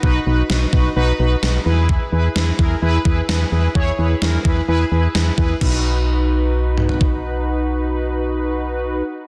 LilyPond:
<<
  \new Staff \with { instrumentName = "Analog polysynth" } { \time 4/4 \key b \major \tempo 4 = 129 <dis' fis' b'>8 <dis' fis' b'>8 <dis' fis' b'>8 <dis' fis' b'>8 <dis' fis' b'>8 <dis' fis' b'>8 <dis' fis' b'>8 <e' gis' b'>8~ | <e' gis' b'>8 <e' gis' b'>8 <e' gis' b'>8 <e' gis' ais'>8 <e' gis' b'>8 <e' gis' b'>8 <e' gis' b'>8 <e' gis' b'>8 | <e' gis' cis''>8 <e' gis' b'>8 <e' gis' ais'>8 <e' gis' b'>8 <e' gis' b'>8 <e' gis' b'>8 <e' gis' b'>8 <e' gis' b'>8 | <dis' fis' b'>1~ |
<dis' fis' b'>1 | }
  \new Staff \with { instrumentName = "FM bass" } { \clef bass \time 4/4 \key b \major b,,8 b,,8 b,,8 b,,8 b,,8 b,,8 b,,8 e,8~ | e,8 e,8 e,8 e,8 e,8 e,8 e,8 e,8 | e,8 e,8 e,8 e,8 e,8 e,8 e,8 e,8 | b,,1~ |
b,,1 | }
  \new DrumStaff \with { instrumentName = "Drums" } \drummode { \time 4/4 bd4 sn8 bd8 r4 sn4 | bd4 sn8 bd8 r8 bd8 sn4 | bd4 sn8 bd8 r4 sn8 bd8 | <cymc bd>4 r4 r8 toml16 tomfh16 bd4 |
r4 r4 r4 r4 | }
>>